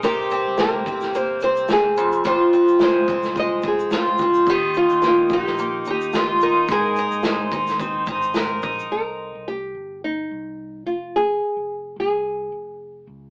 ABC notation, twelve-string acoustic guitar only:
X:1
M:4/4
L:1/8
Q:"Swing 16ths" 1/4=108
K:Cphr
V:1 name="Twelve-string acoustic guitar"
[C,G] C B, C B, C2 F,, | [F,,F] C A, C A, C F C | [E,F] E B, E B, E F E | [A,B] E C E C E B E |
z8 | z8 |]